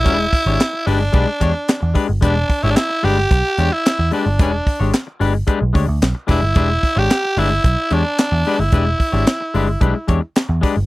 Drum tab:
HH |xoxoxxxo|xoxoxxxo|xoxoxoxo|xoxoxxxo|
CP |--x---x-|--x---x-|--x---x-|--x---x-|
SD |--o---o-|--o---o-|--o---o-|--o---o-|
BD |oo--oo-o|oo--o---|oo--oo-o|oo--o---|

HH |xoxoxxxo|
CP |--x---x-|
SD |--o---o-|
BD |oo--oo-o|